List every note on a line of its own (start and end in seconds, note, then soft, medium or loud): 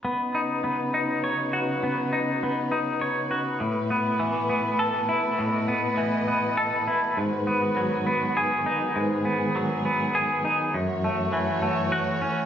0.05 3.58 C#3 soft
0.05 3.58 F#3 soft
0.05 0.64 B3 soft
0.05 3.57 D#4 soft
0.05 10.70 B4 soft
0.35 0.93 D#4 soft
0.64 1.83 B3 soft
0.94 2.11 D#4 soft
1.24 2.72 C#5 soft
1.53 3.02 F#4 soft
1.83 2.43 B3 soft
2.13 2.70 D#4 soft
2.43 3.63 B3 soft
2.72 3.61 D#4 soft
3.01 3.61 C#5 soft
3.31 3.61 F#4 soft
3.60 5.09 A2 soft
3.60 7.13 B2 soft
3.60 7.13 A3 soft
3.60 5.37 E4 soft
3.90 4.49 B3 soft
4.20 5.69 E3 soft
4.49 5.68 B3 soft
4.79 6.28 A4 soft
5.09 6.58 E4 soft
5.37 6.88 A2 soft
5.37 7.15 D#5 soft
5.68 6.27 B3 soft
5.97 7.17 E3 soft
6.28 7.47 B3 soft
6.57 7.17 A4 soft
6.88 7.17 E4 soft
7.16 8.66 G#2 soft
7.16 10.70 D#3 soft
7.16 10.70 G#3 soft
7.16 8.93 F#4 soft
7.47 8.05 B3 soft
7.77 9.55 F#3 soft
8.07 9.24 B3 soft
8.37 9.85 G#4 soft
8.66 10.15 D#4 soft
8.94 10.44 G#2 soft
8.94 10.72 G#4 soft
9.25 9.84 B3 soft
9.56 11.32 F#3 soft
9.85 10.74 B3 soft
10.15 10.74 G#4 soft
10.45 10.74 D#4 soft
10.74 12.23 F#2 soft
10.74 12.46 E3 soft
10.74 12.46 A3 soft
10.74 12.46 F#4 soft
10.74 12.46 C#5 medium
11.04 11.61 A3 soft
11.33 12.46 E3 soft
11.62 12.46 A3 soft
11.92 12.46 F#4 medium
12.22 12.46 C#4 soft